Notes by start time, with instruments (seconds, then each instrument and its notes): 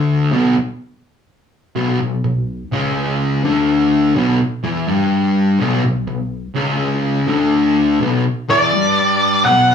Already playing: distorted electric guitar D2 D3
0.32 distorted electric guitar B1 B2
1.76 distorted electric guitar B1 B2
2.01 distorted electric guitar B1
2.24 distorted electric guitar B1
2.72 distorted electric guitar C#2 C#3
3.44 distorted electric guitar D2 D3
4.15 distorted electric guitar B1 B2
4.63 distorted electric guitar E2 E3
4.88 distorted electric guitar G2 G3
5.60 distorted electric guitar B1 B2
5.84 distorted electric guitar B1
6.08 distorted electric guitar B1
6.55 distorted electric guitar C#2 C#3
7.28 distorted electric guitar D2 D3
8.00 distorted electric guitar B1 B2
8.48 distorted electric guitar E2 E3, lead electric guitar D5
8.72 distorted electric guitar G2 G3
9.45 distorted electric guitar B1 B2, lead electric guitar F#5